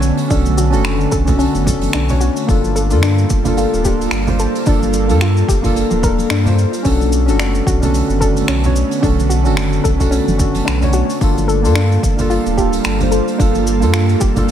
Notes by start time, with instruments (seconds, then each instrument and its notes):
Already playing: sub bass B1, ambient pad D3 A3 B3, synth keys C#4 D4 F#4 C#5
0.02 cabasa
0.17 open hi-hat, cabasa
0.28 sub bass B1, synth keys C#4 D4 F#4 A4, synth arpeggio sound D4, kick, open hi-hat, cabasa
0.46 muted conga, cabasa
0.58 synth arpeggio sound F#4, cabasa
0.70 sub bass F#1, synth keys C#4 D4 F#4, open hi-hat, cabasa
0.74 synth keys A4
0.84 finger snap, open hi-hat, cabasa
1.01 cabasa
1.12 sub bass B1, synth arpeggio sound A4, kick, cabasa
1.25 synth keys C#4 D4 F#4 A4, kick, open hi-hat, low conga, cabasa
1.39 synth arpeggio sound C#4, open hi-hat, cabasa
1.54 sub bass F#1, muted conga, high conga, cabasa
1.64 synth keys C#4 D4 F#4 A4, kick, muted conga, low conga, cabasa
1.81 open hi-hat, muted conga, cabasa
1.93 sub bass B1, synth arpeggio sound D4, finger snap, cabasa
2.07 synth keys C#4 D4 F#4 C#5, open hi-hat, low conga, cabasa
2.20 synth arpeggio sound F#4, cabasa
2.36 open hi-hat, cabasa
2.47 sub bass G1, ambient pad G3 A#3 F4 A4, synth keys A#3 D4 F4 A4, kick, open hi-hat, cabasa
2.64 muted conga, cabasa
2.76 synth arpeggio sound A4, cabasa
2.89 sub bass G2, synth keys A#3 D4 F4 A4, open hi-hat, cabasa
3.03 synth arpeggio sound D4, finger snap, open hi-hat, cabasa
3.18 cabasa
3.30 sub bass G1, kick, cabasa
3.45 synth keys A#3 D4 F4 A4, open hi-hat, low conga, cabasa
3.57 synth arpeggio sound F4, open hi-hat, cabasa
3.73 sub bass D1, cabasa
3.83 synth keys A#3 D4 F4 A4, synth arpeggio sound G4, kick, cabasa
4.01 open hi-hat, cabasa
4.11 sub bass G1, finger snap, open hi-hat, cabasa
4.26 synth keys A#3 D4 F4 C5, open hi-hat, muted conga, low conga, cabasa
4.39 synth arpeggio sound A4, cabasa
4.55 open hi-hat, cabasa
4.65 sub bass G1, synth keys A#3 D4 F4 A4, synth arpeggio sound D4, kick, open hi-hat, cabasa
4.82 muted conga, cabasa
4.93 cabasa
5.08 sub bass G2, synth keys A#3 D4 F4 A4, open hi-hat, high conga, cabasa
5.21 synth arpeggio sound F4, finger snap, open hi-hat, cabasa
5.37 cabasa
5.48 sub bass G1, synth arpeggio sound G4, kick, cabasa
5.62 synth keys A#3 D4 F4 A4, kick, open hi-hat, low conga, cabasa
5.76 open hi-hat, cabasa
5.91 sub bass D1, muted conga, high conga, cabasa
6.02 synth keys A#3 D4 F4 A4, synth arpeggio sound A#4, kick, muted conga, low conga, cabasa
6.18 open hi-hat, muted conga, cabasa
6.30 sub bass G2, synth arpeggio sound D4, finger snap, open hi-hat, cabasa
6.44 synth keys A#3 D4 F4 C5, open hi-hat, low conga, cabasa
6.58 cabasa
6.73 open hi-hat, cabasa
6.83 sub bass B1, ambient pad D3 A3 B3, synth keys C#4 D4 F#4, synth arpeggio sound C#4, kick, open hi-hat, cabasa
6.87 synth keys A4
7.01 muted conga, cabasa
7.12 cabasa
7.26 sub bass F#1, synth keys C#4 D4 F#4 A4, open hi-hat, cabasa
7.39 synth arpeggio sound D4, finger snap, open hi-hat, cabasa
7.55 cabasa
7.67 sub bass B1, synth arpeggio sound F#4, kick, cabasa
7.81 synth keys C#4 D4 F#4 A4, open hi-hat, low conga, cabasa
7.94 open hi-hat, cabasa
8.09 sub bass F#1, cabasa
8.20 synth keys C#4 D4 F#4 A4, synth arpeggio sound A4, kick, cabasa
8.36 open hi-hat, cabasa
8.48 sub bass B1, synth arpeggio sound C#4, finger snap, open hi-hat, cabasa
8.62 synth keys C#4 D4 F#4 C#5, open hi-hat, muted conga, low conga, cabasa
8.76 cabasa
8.91 open hi-hat, cabasa
9.01 sub bass B1, synth keys C#4 D4 F#4 A4, synth arpeggio sound D4, kick, open hi-hat, cabasa
9.19 muted conga, cabasa
9.30 synth arpeggio sound F#4, cabasa
9.43 sub bass F#1, synth keys C#4 D4 F#4 A4, open hi-hat, cabasa
9.57 finger snap, open hi-hat, cabasa
9.73 cabasa
9.84 sub bass B1, synth arpeggio sound A4, kick, cabasa
9.97 synth keys C#4 D4 F#4 A4, kick, open hi-hat, low conga, cabasa
10.11 synth arpeggio sound C#4, open hi-hat, cabasa
10.28 sub bass F#1, muted conga, high conga, cabasa
10.37 synth keys C#4 D4 F#4 A4, kick, muted conga, low conga, cabasa
10.54 open hi-hat, muted conga, cabasa
10.65 sub bass B1, synth arpeggio sound D4, finger snap, open hi-hat, cabasa
10.80 synth keys C#4 D4 F#4 C#5, open hi-hat, low conga, cabasa
10.93 synth arpeggio sound F#4, cabasa
11.09 open hi-hat, cabasa
11.20 sub bass G1, ambient pad G3 A#3 F4 A4, synth keys A#3 D4 F4 A4, kick, open hi-hat, cabasa
11.37 muted conga, cabasa
11.48 synth arpeggio sound A4, cabasa
11.63 sub bass G2, synth keys A#3 D4 F4 A4, open hi-hat, cabasa
11.75 synth arpeggio sound D4, finger snap, open hi-hat, cabasa
11.92 cabasa
12.03 sub bass G1, kick, cabasa
12.17 synth keys A#3 D4 F4 A4, open hi-hat, low conga, cabasa
12.30 synth arpeggio sound F4, open hi-hat, cabasa
12.46 sub bass D1, cabasa
12.57 synth keys A#3 D4 F4 A4, synth arpeggio sound G4, kick, cabasa
12.73 open hi-hat, cabasa
12.84 sub bass G1, finger snap, open hi-hat, cabasa
12.99 synth keys A#3 D4 F4, open hi-hat, muted conga, low conga, cabasa
13.03 synth keys C5
13.11 synth arpeggio sound A4, cabasa
13.28 open hi-hat, cabasa
13.38 sub bass G1, synth keys A#3 D4 F4 A4, synth arpeggio sound D4, kick, open hi-hat, cabasa
13.55 open hi-hat, muted conga, cabasa
13.67 cabasa
13.80 sub bass G2, synth keys A#3 D4 F4 A4, open hi-hat, cabasa
13.94 synth arpeggio sound F4, finger snap, open hi-hat, cabasa
14.09 open hi-hat, cabasa
14.20 sub bass G1, synth arpeggio sound G4, kick, cabasa
14.34 synth keys A#3 D4 F4 A4, kick, open hi-hat, low conga, cabasa